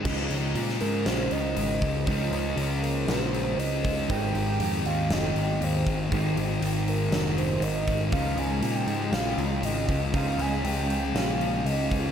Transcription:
0.04 C#2 C#3 F3 G#3 C#4 D#4, kick, crash
0.30 C#2, open hi-hat
0.55 A#2, open hi-hat
0.69 snare
0.81 G#2 A#4, open hi-hat
1.05 A#1 C5, snare, open hi-hat
1.31 C#2 D#5, open hi-hat
1.56 G#1 D#5, open hi-hat
1.82 C#2, kick, open hi-hat
2.06 C#2 C#3 F3 G#3 D#4, kick, open hi-hat
2.10 C#4
2.31 C#2, open hi-hat
2.57 C#2, open hi-hat
2.82 A#4, open hi-hat
3.08 A#1 C5, snare, open hi-hat
3.34 open hi-hat
3.58 C#2 D#5, open hi-hat
3.85 kick, open hi-hat
4.08 G#1 G#2 D#3 G#3 C4 D#4 G5, kick, open hi-hat
4.34 G#1, open hi-hat
4.60 F2, open hi-hat
4.85 D#2 F5, open hi-hat
5.10 F1 D#5, snare, open hi-hat
5.36 G#1, open hi-hat
5.61 D#2 C5, open hi-hat
5.86 G#1, kick, open hi-hat
6.10 G#1 G#2 D#3 C4 D#4, kick, open hi-hat
6.14 G#3
6.37 G#1, open hi-hat
6.61 G#1, open hi-hat
6.88 A#4, open hi-hat
7.11 F1, snare, open hi-hat
7.38 C5, open hi-hat
7.61 G#1 D#5, open hi-hat
7.88 kick, open hi-hat
8.11 C#2 C#3 F3 G#3 C#4 D#4 F5, kick, open hi-hat
8.36 C#2 G#5, open hi-hat
8.61 A#2 G#5, open hi-hat
8.74 G5
8.87 G#2, open hi-hat
9.12 A#1 F5, snare, open hi-hat
9.37 C#2, open hi-hat
9.62 G#1 D#5, open hi-hat
9.88 C#2, kick, open hi-hat
10.12 C#2 C#3 F3 G#3 C#4 D#4 F5, kick, open hi-hat
10.38 C#2 G#5, open hi-hat
10.64 C#2 G5, open hi-hat
10.90 open hi-hat
11.15 A#1 F5, snare, open hi-hat
11.41 open hi-hat
11.65 C#2 D#5, open hi-hat
11.91 kick, open hi-hat

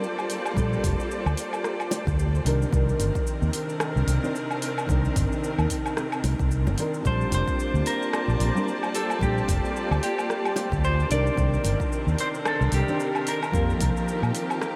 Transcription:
Already playing: A#3 F4 G4 A4 C5 D5
0.04 shaker
0.18 low woodblock, shaker
0.30 open hi-hat, shaker
0.45 low woodblock, shaker
0.54 A#1 G3 C4 D4, kick, shaker
0.59 A4
0.73 shaker
0.84 F1, kick, open hi-hat, shaker
1.00 shaker
1.11 shaker
1.26 D2, low woodblock, shaker
1.37 open hi-hat, shaker
1.53 low woodblock, shaker
1.64 cross-stick, shaker
1.80 low woodblock, shaker
1.91 open hi-hat, high bongo, shaker
2.07 D2, kick, shaker
2.19 shaker
2.35 shaker
2.44 C2 C3 D#3 C4 D4 A#4, open hi-hat, shaker
2.62 shaker
2.70 C2 D#3 C4 D4, kick, shaker
2.75 A#4
2.89 shaker
2.99 G1, open hi-hat, high bongo, shaker
3.15 kick, shaker
3.27 shaker
3.42 D#2, shaker
3.53 open hi-hat, shaker
3.69 shaker
3.80 cross-stick, low woodblock, shaker
3.96 C2, shaker
4.07 C2, open hi-hat, shaker
4.22 D#3 C4 D4 C5, shaker
4.36 shaker
4.51 low woodblock, shaker
4.62 open hi-hat, shaker
4.78 low woodblock, shaker
4.86 C2 D#3 C4 D4, kick, shaker
4.92 A#4
5.05 shaker
5.16 G1, kick, open hi-hat, shaker
5.32 shaker
5.44 shaker
5.59 D#2, low woodblock, shaker
5.70 kick, open hi-hat, shaker
5.86 low woodblock, shaker
5.97 cross-stick, shaker
6.12 low woodblock, shaker
6.24 C2, open hi-hat, high bongo, shaker
6.39 C2, kick, shaker
6.51 shaker
6.66 G1, high bongo, shaker
6.77 D#3 C4 D4 A#4, open hi-hat, shaker
6.94 shaker
7.02 A#1 G3 A#3 C4 D4 F4 G4 C5 D5 A5, kick, shaker
7.07 C5 A5
7.21 shaker
7.32 F1 C5, open hi-hat, high bongo, shaker
7.48 kick, shaker
7.60 shaker
7.74 D2, shaker
7.86 A#4, open hi-hat, shaker
8.02 shaker
8.13 cross-stick, low woodblock, shaker
8.28 A#1, shaker
8.40 A#1, open hi-hat, shaker
8.55 G3 C4 D4 A#4, shaker
8.68 shaker
8.83 low woodblock, shaker
8.95 A4, open hi-hat, shaker
9.10 low woodblock, shaker
9.19 A#1 G3 C4 D4 G4, kick, shaker
9.24 A4
9.38 shaker
9.48 F1, kick, open hi-hat, shaker
9.65 shaker
9.76 shaker
9.91 D2, low woodblock, shaker
10.03 G4, open hi-hat, shaker
10.18 low woodblock, shaker
10.30 cross-stick, shaker
10.45 low woodblock, shaker
10.56 open hi-hat, high bongo, shaker
10.72 D2, kick, shaker
10.84 C5, shaker
11.00 shaker
11.09 C2 C3 D#3 C4 D4 A#4 D5, open hi-hat, shaker
11.27 shaker
11.35 C2 D#3 C4 D4, kick, shaker
11.41 A#4
11.54 shaker
11.64 G1, open hi-hat, high bongo, shaker
11.80 kick, shaker
11.92 shaker
12.07 D#2, shaker
12.18 C5, open hi-hat, shaker
12.35 shaker
12.45 A4, cross-stick, low woodblock, shaker
12.61 C2, shaker
12.72 C2 G4, open hi-hat, shaker
12.87 D#3 C4 D4 C5, shaker
13.00 shaker
13.15 low woodblock, shaker
13.27 A#4, open hi-hat, shaker
13.43 low woodblock, shaker
13.52 F2 F3 A#3 C4 D#4 G4, kick, shaker
13.57 G4
13.70 shaker
13.81 C2, kick, open hi-hat, shaker
13.97 shaker
14.08 shaker
14.23 A#2, low woodblock, shaker
14.35 open hi-hat, shaker
14.50 low woodblock, shaker
14.62 cross-stick, shaker

